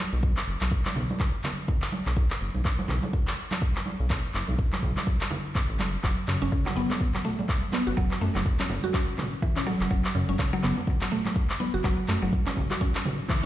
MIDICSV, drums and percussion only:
0, 0, Header, 1, 2, 480
1, 0, Start_track
1, 0, Tempo, 483871
1, 228, Time_signature, 4, 2, 24, 8
1, 13348, End_track
2, 0, Start_track
2, 0, Title_t, "Drums"
2, 124, Note_on_c, 9, 42, 42
2, 224, Note_off_c, 9, 42, 0
2, 226, Note_on_c, 9, 42, 56
2, 228, Note_on_c, 9, 36, 114
2, 325, Note_off_c, 9, 42, 0
2, 327, Note_off_c, 9, 36, 0
2, 364, Note_on_c, 9, 39, 90
2, 364, Note_on_c, 9, 42, 31
2, 463, Note_off_c, 9, 39, 0
2, 463, Note_off_c, 9, 42, 0
2, 604, Note_on_c, 9, 39, 77
2, 604, Note_on_c, 9, 42, 43
2, 610, Note_on_c, 9, 63, 54
2, 703, Note_off_c, 9, 39, 0
2, 703, Note_off_c, 9, 42, 0
2, 707, Note_on_c, 9, 42, 51
2, 709, Note_off_c, 9, 63, 0
2, 709, Note_on_c, 9, 36, 120
2, 806, Note_off_c, 9, 42, 0
2, 808, Note_off_c, 9, 36, 0
2, 845, Note_on_c, 9, 39, 90
2, 845, Note_on_c, 9, 42, 29
2, 853, Note_on_c, 9, 63, 87
2, 943, Note_on_c, 9, 64, 98
2, 945, Note_off_c, 9, 39, 0
2, 945, Note_off_c, 9, 42, 0
2, 953, Note_off_c, 9, 63, 0
2, 1042, Note_off_c, 9, 64, 0
2, 1086, Note_on_c, 9, 42, 43
2, 1093, Note_on_c, 9, 63, 94
2, 1185, Note_off_c, 9, 42, 0
2, 1187, Note_on_c, 9, 39, 94
2, 1187, Note_on_c, 9, 42, 54
2, 1189, Note_on_c, 9, 36, 114
2, 1192, Note_off_c, 9, 63, 0
2, 1287, Note_off_c, 9, 39, 0
2, 1287, Note_off_c, 9, 42, 0
2, 1288, Note_off_c, 9, 36, 0
2, 1326, Note_on_c, 9, 42, 29
2, 1426, Note_off_c, 9, 42, 0
2, 1426, Note_on_c, 9, 39, 74
2, 1429, Note_on_c, 9, 64, 98
2, 1431, Note_on_c, 9, 63, 64
2, 1525, Note_off_c, 9, 39, 0
2, 1529, Note_off_c, 9, 64, 0
2, 1530, Note_off_c, 9, 63, 0
2, 1566, Note_on_c, 9, 42, 43
2, 1665, Note_off_c, 9, 42, 0
2, 1667, Note_on_c, 9, 42, 53
2, 1669, Note_on_c, 9, 36, 122
2, 1671, Note_on_c, 9, 64, 78
2, 1767, Note_off_c, 9, 42, 0
2, 1768, Note_off_c, 9, 36, 0
2, 1770, Note_off_c, 9, 64, 0
2, 1805, Note_on_c, 9, 39, 95
2, 1904, Note_off_c, 9, 39, 0
2, 1908, Note_on_c, 9, 63, 91
2, 2007, Note_off_c, 9, 63, 0
2, 2047, Note_on_c, 9, 39, 80
2, 2047, Note_on_c, 9, 42, 41
2, 2146, Note_off_c, 9, 39, 0
2, 2146, Note_off_c, 9, 42, 0
2, 2147, Note_on_c, 9, 42, 53
2, 2149, Note_on_c, 9, 36, 124
2, 2246, Note_off_c, 9, 42, 0
2, 2248, Note_off_c, 9, 36, 0
2, 2286, Note_on_c, 9, 39, 98
2, 2286, Note_on_c, 9, 42, 31
2, 2385, Note_off_c, 9, 39, 0
2, 2385, Note_off_c, 9, 42, 0
2, 2524, Note_on_c, 9, 63, 65
2, 2527, Note_on_c, 9, 42, 40
2, 2623, Note_off_c, 9, 63, 0
2, 2626, Note_off_c, 9, 42, 0
2, 2628, Note_on_c, 9, 36, 118
2, 2629, Note_on_c, 9, 39, 89
2, 2629, Note_on_c, 9, 42, 49
2, 2728, Note_off_c, 9, 36, 0
2, 2728, Note_off_c, 9, 39, 0
2, 2728, Note_off_c, 9, 42, 0
2, 2766, Note_on_c, 9, 63, 98
2, 2767, Note_on_c, 9, 42, 27
2, 2860, Note_on_c, 9, 64, 100
2, 2865, Note_off_c, 9, 63, 0
2, 2866, Note_off_c, 9, 42, 0
2, 2869, Note_on_c, 9, 39, 81
2, 2959, Note_off_c, 9, 64, 0
2, 2968, Note_off_c, 9, 39, 0
2, 3003, Note_on_c, 9, 63, 97
2, 3008, Note_on_c, 9, 42, 40
2, 3103, Note_off_c, 9, 63, 0
2, 3107, Note_off_c, 9, 42, 0
2, 3108, Note_on_c, 9, 36, 120
2, 3109, Note_on_c, 9, 42, 53
2, 3208, Note_off_c, 9, 36, 0
2, 3208, Note_off_c, 9, 42, 0
2, 3248, Note_on_c, 9, 39, 96
2, 3248, Note_on_c, 9, 42, 28
2, 3347, Note_off_c, 9, 39, 0
2, 3347, Note_off_c, 9, 42, 0
2, 3483, Note_on_c, 9, 63, 101
2, 3487, Note_on_c, 9, 39, 80
2, 3487, Note_on_c, 9, 42, 41
2, 3583, Note_off_c, 9, 63, 0
2, 3586, Note_off_c, 9, 39, 0
2, 3586, Note_off_c, 9, 42, 0
2, 3588, Note_on_c, 9, 36, 127
2, 3588, Note_on_c, 9, 42, 54
2, 3687, Note_off_c, 9, 42, 0
2, 3688, Note_off_c, 9, 36, 0
2, 3727, Note_on_c, 9, 39, 92
2, 3826, Note_off_c, 9, 39, 0
2, 3828, Note_on_c, 9, 63, 92
2, 3927, Note_off_c, 9, 63, 0
2, 3967, Note_on_c, 9, 42, 41
2, 4066, Note_off_c, 9, 42, 0
2, 4068, Note_on_c, 9, 36, 123
2, 4068, Note_on_c, 9, 39, 92
2, 4068, Note_on_c, 9, 42, 51
2, 4167, Note_off_c, 9, 36, 0
2, 4167, Note_off_c, 9, 39, 0
2, 4167, Note_off_c, 9, 42, 0
2, 4207, Note_on_c, 9, 42, 30
2, 4307, Note_off_c, 9, 42, 0
2, 4309, Note_on_c, 9, 39, 82
2, 4408, Note_off_c, 9, 39, 0
2, 4445, Note_on_c, 9, 63, 56
2, 4448, Note_on_c, 9, 42, 42
2, 4544, Note_off_c, 9, 63, 0
2, 4548, Note_off_c, 9, 42, 0
2, 4549, Note_on_c, 9, 36, 116
2, 4550, Note_on_c, 9, 42, 51
2, 4648, Note_off_c, 9, 36, 0
2, 4649, Note_off_c, 9, 42, 0
2, 4688, Note_on_c, 9, 39, 94
2, 4688, Note_on_c, 9, 42, 27
2, 4690, Note_on_c, 9, 63, 84
2, 4788, Note_off_c, 9, 39, 0
2, 4788, Note_off_c, 9, 42, 0
2, 4789, Note_off_c, 9, 63, 0
2, 4789, Note_on_c, 9, 36, 63
2, 4792, Note_on_c, 9, 64, 98
2, 4888, Note_off_c, 9, 36, 0
2, 4891, Note_off_c, 9, 64, 0
2, 4926, Note_on_c, 9, 63, 105
2, 4929, Note_on_c, 9, 39, 78
2, 4929, Note_on_c, 9, 42, 39
2, 5026, Note_off_c, 9, 63, 0
2, 5028, Note_off_c, 9, 39, 0
2, 5028, Note_off_c, 9, 42, 0
2, 5028, Note_on_c, 9, 36, 117
2, 5030, Note_on_c, 9, 42, 53
2, 5128, Note_off_c, 9, 36, 0
2, 5129, Note_off_c, 9, 42, 0
2, 5168, Note_on_c, 9, 39, 87
2, 5168, Note_on_c, 9, 42, 28
2, 5264, Note_on_c, 9, 64, 113
2, 5267, Note_off_c, 9, 39, 0
2, 5267, Note_off_c, 9, 42, 0
2, 5275, Note_on_c, 9, 63, 56
2, 5363, Note_off_c, 9, 64, 0
2, 5374, Note_off_c, 9, 63, 0
2, 5406, Note_on_c, 9, 42, 39
2, 5504, Note_on_c, 9, 64, 74
2, 5505, Note_off_c, 9, 42, 0
2, 5508, Note_on_c, 9, 36, 122
2, 5509, Note_on_c, 9, 39, 93
2, 5509, Note_on_c, 9, 42, 52
2, 5603, Note_off_c, 9, 64, 0
2, 5608, Note_off_c, 9, 36, 0
2, 5608, Note_off_c, 9, 39, 0
2, 5608, Note_off_c, 9, 42, 0
2, 5647, Note_on_c, 9, 42, 29
2, 5744, Note_on_c, 9, 63, 99
2, 5746, Note_off_c, 9, 42, 0
2, 5749, Note_on_c, 9, 39, 77
2, 5843, Note_off_c, 9, 63, 0
2, 5849, Note_off_c, 9, 39, 0
2, 5888, Note_on_c, 9, 42, 41
2, 5987, Note_off_c, 9, 42, 0
2, 5988, Note_on_c, 9, 36, 114
2, 5989, Note_on_c, 9, 39, 90
2, 5989, Note_on_c, 9, 42, 53
2, 6088, Note_off_c, 9, 36, 0
2, 6088, Note_off_c, 9, 39, 0
2, 6088, Note_off_c, 9, 42, 0
2, 6127, Note_on_c, 9, 42, 30
2, 6226, Note_off_c, 9, 42, 0
2, 6229, Note_on_c, 9, 39, 79
2, 6229, Note_on_c, 9, 46, 84
2, 6328, Note_off_c, 9, 39, 0
2, 6328, Note_off_c, 9, 46, 0
2, 6367, Note_on_c, 9, 42, 40
2, 6369, Note_on_c, 9, 63, 60
2, 6467, Note_off_c, 9, 42, 0
2, 6468, Note_off_c, 9, 63, 0
2, 6469, Note_on_c, 9, 36, 114
2, 6471, Note_on_c, 9, 42, 48
2, 6568, Note_off_c, 9, 36, 0
2, 6570, Note_off_c, 9, 42, 0
2, 6609, Note_on_c, 9, 39, 87
2, 6609, Note_on_c, 9, 42, 27
2, 6609, Note_on_c, 9, 63, 84
2, 6702, Note_on_c, 9, 64, 98
2, 6708, Note_off_c, 9, 63, 0
2, 6709, Note_off_c, 9, 39, 0
2, 6709, Note_off_c, 9, 42, 0
2, 6710, Note_on_c, 9, 46, 79
2, 6801, Note_off_c, 9, 64, 0
2, 6809, Note_off_c, 9, 46, 0
2, 6845, Note_on_c, 9, 63, 100
2, 6849, Note_on_c, 9, 39, 76
2, 6849, Note_on_c, 9, 42, 40
2, 6944, Note_off_c, 9, 63, 0
2, 6949, Note_off_c, 9, 39, 0
2, 6949, Note_off_c, 9, 42, 0
2, 6949, Note_on_c, 9, 36, 108
2, 6951, Note_on_c, 9, 42, 55
2, 6951, Note_on_c, 9, 45, 96
2, 7048, Note_off_c, 9, 36, 0
2, 7050, Note_off_c, 9, 42, 0
2, 7050, Note_off_c, 9, 45, 0
2, 7089, Note_on_c, 9, 39, 87
2, 7089, Note_on_c, 9, 42, 29
2, 7188, Note_off_c, 9, 39, 0
2, 7188, Note_off_c, 9, 42, 0
2, 7190, Note_on_c, 9, 45, 92
2, 7190, Note_on_c, 9, 46, 82
2, 7289, Note_off_c, 9, 45, 0
2, 7289, Note_off_c, 9, 46, 0
2, 7329, Note_on_c, 9, 42, 41
2, 7329, Note_on_c, 9, 63, 102
2, 7428, Note_off_c, 9, 42, 0
2, 7428, Note_off_c, 9, 63, 0
2, 7429, Note_on_c, 9, 36, 115
2, 7430, Note_on_c, 9, 39, 88
2, 7430, Note_on_c, 9, 42, 51
2, 7528, Note_off_c, 9, 36, 0
2, 7529, Note_off_c, 9, 39, 0
2, 7529, Note_off_c, 9, 42, 0
2, 7658, Note_on_c, 9, 63, 91
2, 7671, Note_on_c, 9, 39, 78
2, 7671, Note_on_c, 9, 46, 82
2, 7758, Note_off_c, 9, 63, 0
2, 7770, Note_off_c, 9, 39, 0
2, 7770, Note_off_c, 9, 46, 0
2, 7810, Note_on_c, 9, 42, 42
2, 7909, Note_off_c, 9, 42, 0
2, 7909, Note_on_c, 9, 36, 116
2, 7910, Note_on_c, 9, 42, 54
2, 8008, Note_off_c, 9, 36, 0
2, 8010, Note_off_c, 9, 42, 0
2, 8049, Note_on_c, 9, 39, 87
2, 8049, Note_on_c, 9, 42, 30
2, 8148, Note_off_c, 9, 39, 0
2, 8148, Note_off_c, 9, 42, 0
2, 8151, Note_on_c, 9, 46, 85
2, 8250, Note_off_c, 9, 46, 0
2, 8282, Note_on_c, 9, 63, 60
2, 8289, Note_on_c, 9, 39, 75
2, 8289, Note_on_c, 9, 42, 44
2, 8381, Note_off_c, 9, 63, 0
2, 8388, Note_off_c, 9, 39, 0
2, 8388, Note_off_c, 9, 42, 0
2, 8389, Note_on_c, 9, 36, 110
2, 8389, Note_on_c, 9, 42, 50
2, 8488, Note_off_c, 9, 36, 0
2, 8488, Note_off_c, 9, 42, 0
2, 8527, Note_on_c, 9, 39, 85
2, 8527, Note_on_c, 9, 42, 30
2, 8528, Note_on_c, 9, 63, 89
2, 8626, Note_on_c, 9, 64, 94
2, 8627, Note_off_c, 9, 39, 0
2, 8627, Note_off_c, 9, 42, 0
2, 8627, Note_off_c, 9, 63, 0
2, 8628, Note_on_c, 9, 46, 81
2, 8726, Note_off_c, 9, 64, 0
2, 8727, Note_off_c, 9, 46, 0
2, 8760, Note_on_c, 9, 63, 100
2, 8767, Note_on_c, 9, 42, 41
2, 8860, Note_off_c, 9, 63, 0
2, 8866, Note_off_c, 9, 42, 0
2, 8867, Note_on_c, 9, 39, 91
2, 8867, Note_on_c, 9, 42, 57
2, 8869, Note_on_c, 9, 36, 113
2, 8966, Note_off_c, 9, 39, 0
2, 8966, Note_off_c, 9, 42, 0
2, 8968, Note_off_c, 9, 36, 0
2, 9005, Note_on_c, 9, 42, 31
2, 9104, Note_off_c, 9, 42, 0
2, 9106, Note_on_c, 9, 39, 73
2, 9106, Note_on_c, 9, 45, 96
2, 9106, Note_on_c, 9, 46, 81
2, 9106, Note_on_c, 9, 63, 53
2, 9113, Note_on_c, 9, 64, 97
2, 9205, Note_off_c, 9, 63, 0
2, 9206, Note_off_c, 9, 39, 0
2, 9206, Note_off_c, 9, 45, 0
2, 9206, Note_off_c, 9, 46, 0
2, 9212, Note_off_c, 9, 64, 0
2, 9247, Note_on_c, 9, 46, 48
2, 9346, Note_off_c, 9, 46, 0
2, 9348, Note_on_c, 9, 36, 114
2, 9349, Note_on_c, 9, 42, 53
2, 9352, Note_on_c, 9, 64, 74
2, 9447, Note_off_c, 9, 36, 0
2, 9448, Note_off_c, 9, 42, 0
2, 9451, Note_off_c, 9, 64, 0
2, 9487, Note_on_c, 9, 39, 88
2, 9487, Note_on_c, 9, 45, 88
2, 9586, Note_off_c, 9, 39, 0
2, 9586, Note_off_c, 9, 45, 0
2, 9588, Note_on_c, 9, 46, 86
2, 9588, Note_on_c, 9, 63, 91
2, 9687, Note_off_c, 9, 46, 0
2, 9687, Note_off_c, 9, 63, 0
2, 9727, Note_on_c, 9, 39, 77
2, 9727, Note_on_c, 9, 42, 45
2, 9826, Note_off_c, 9, 39, 0
2, 9826, Note_off_c, 9, 42, 0
2, 9826, Note_on_c, 9, 42, 57
2, 9828, Note_on_c, 9, 36, 107
2, 9925, Note_off_c, 9, 42, 0
2, 9927, Note_off_c, 9, 36, 0
2, 9966, Note_on_c, 9, 39, 88
2, 9966, Note_on_c, 9, 42, 34
2, 10066, Note_off_c, 9, 39, 0
2, 10066, Note_off_c, 9, 42, 0
2, 10067, Note_on_c, 9, 46, 90
2, 10166, Note_off_c, 9, 46, 0
2, 10206, Note_on_c, 9, 42, 43
2, 10206, Note_on_c, 9, 63, 65
2, 10305, Note_off_c, 9, 42, 0
2, 10306, Note_off_c, 9, 63, 0
2, 10307, Note_on_c, 9, 36, 113
2, 10307, Note_on_c, 9, 39, 82
2, 10307, Note_on_c, 9, 42, 52
2, 10406, Note_off_c, 9, 36, 0
2, 10406, Note_off_c, 9, 39, 0
2, 10406, Note_off_c, 9, 42, 0
2, 10443, Note_on_c, 9, 63, 87
2, 10446, Note_on_c, 9, 42, 30
2, 10542, Note_off_c, 9, 63, 0
2, 10545, Note_off_c, 9, 42, 0
2, 10547, Note_on_c, 9, 39, 74
2, 10547, Note_on_c, 9, 46, 88
2, 10548, Note_on_c, 9, 64, 98
2, 10646, Note_off_c, 9, 39, 0
2, 10646, Note_off_c, 9, 46, 0
2, 10647, Note_off_c, 9, 64, 0
2, 10686, Note_on_c, 9, 42, 45
2, 10688, Note_on_c, 9, 63, 86
2, 10785, Note_off_c, 9, 42, 0
2, 10786, Note_on_c, 9, 42, 58
2, 10786, Note_on_c, 9, 45, 93
2, 10787, Note_off_c, 9, 63, 0
2, 10787, Note_on_c, 9, 36, 109
2, 10885, Note_off_c, 9, 42, 0
2, 10885, Note_off_c, 9, 45, 0
2, 10886, Note_off_c, 9, 36, 0
2, 10924, Note_on_c, 9, 39, 82
2, 10924, Note_on_c, 9, 42, 31
2, 11024, Note_off_c, 9, 39, 0
2, 11024, Note_off_c, 9, 42, 0
2, 11025, Note_on_c, 9, 45, 93
2, 11025, Note_on_c, 9, 46, 88
2, 11124, Note_off_c, 9, 45, 0
2, 11124, Note_off_c, 9, 46, 0
2, 11163, Note_on_c, 9, 63, 82
2, 11165, Note_on_c, 9, 39, 78
2, 11165, Note_on_c, 9, 42, 46
2, 11263, Note_off_c, 9, 63, 0
2, 11265, Note_off_c, 9, 39, 0
2, 11265, Note_off_c, 9, 42, 0
2, 11267, Note_on_c, 9, 36, 110
2, 11267, Note_on_c, 9, 42, 55
2, 11366, Note_off_c, 9, 36, 0
2, 11366, Note_off_c, 9, 42, 0
2, 11404, Note_on_c, 9, 39, 86
2, 11503, Note_off_c, 9, 39, 0
2, 11506, Note_on_c, 9, 46, 87
2, 11509, Note_on_c, 9, 63, 85
2, 11605, Note_off_c, 9, 46, 0
2, 11608, Note_off_c, 9, 63, 0
2, 11644, Note_on_c, 9, 42, 43
2, 11743, Note_off_c, 9, 42, 0
2, 11745, Note_on_c, 9, 39, 89
2, 11745, Note_on_c, 9, 42, 59
2, 11747, Note_on_c, 9, 36, 114
2, 11844, Note_off_c, 9, 39, 0
2, 11844, Note_off_c, 9, 42, 0
2, 11846, Note_off_c, 9, 36, 0
2, 11884, Note_on_c, 9, 42, 33
2, 11983, Note_off_c, 9, 42, 0
2, 11986, Note_on_c, 9, 39, 77
2, 11986, Note_on_c, 9, 46, 92
2, 12085, Note_off_c, 9, 39, 0
2, 12085, Note_off_c, 9, 46, 0
2, 12126, Note_on_c, 9, 42, 45
2, 12128, Note_on_c, 9, 63, 58
2, 12225, Note_off_c, 9, 42, 0
2, 12227, Note_off_c, 9, 63, 0
2, 12227, Note_on_c, 9, 36, 108
2, 12227, Note_on_c, 9, 42, 55
2, 12326, Note_off_c, 9, 42, 0
2, 12327, Note_off_c, 9, 36, 0
2, 12366, Note_on_c, 9, 39, 84
2, 12366, Note_on_c, 9, 42, 32
2, 12373, Note_on_c, 9, 63, 80
2, 12466, Note_off_c, 9, 39, 0
2, 12466, Note_off_c, 9, 42, 0
2, 12467, Note_on_c, 9, 46, 89
2, 12468, Note_on_c, 9, 36, 58
2, 12472, Note_off_c, 9, 63, 0
2, 12472, Note_on_c, 9, 64, 102
2, 12566, Note_off_c, 9, 46, 0
2, 12567, Note_off_c, 9, 36, 0
2, 12571, Note_off_c, 9, 64, 0
2, 12599, Note_on_c, 9, 63, 105
2, 12606, Note_on_c, 9, 39, 77
2, 12606, Note_on_c, 9, 42, 44
2, 12699, Note_off_c, 9, 63, 0
2, 12705, Note_off_c, 9, 39, 0
2, 12705, Note_off_c, 9, 42, 0
2, 12708, Note_on_c, 9, 36, 108
2, 12708, Note_on_c, 9, 42, 59
2, 12807, Note_off_c, 9, 36, 0
2, 12807, Note_off_c, 9, 42, 0
2, 12847, Note_on_c, 9, 39, 83
2, 12847, Note_on_c, 9, 42, 32
2, 12943, Note_on_c, 9, 63, 55
2, 12946, Note_off_c, 9, 39, 0
2, 12946, Note_off_c, 9, 42, 0
2, 12949, Note_on_c, 9, 45, 87
2, 12949, Note_on_c, 9, 46, 88
2, 12951, Note_on_c, 9, 64, 96
2, 13042, Note_off_c, 9, 63, 0
2, 13048, Note_off_c, 9, 45, 0
2, 13048, Note_off_c, 9, 46, 0
2, 13051, Note_off_c, 9, 64, 0
2, 13087, Note_on_c, 9, 46, 53
2, 13179, Note_on_c, 9, 64, 84
2, 13186, Note_off_c, 9, 46, 0
2, 13188, Note_on_c, 9, 36, 112
2, 13188, Note_on_c, 9, 39, 91
2, 13188, Note_on_c, 9, 42, 57
2, 13278, Note_off_c, 9, 64, 0
2, 13287, Note_off_c, 9, 36, 0
2, 13288, Note_off_c, 9, 39, 0
2, 13288, Note_off_c, 9, 42, 0
2, 13348, End_track
0, 0, End_of_file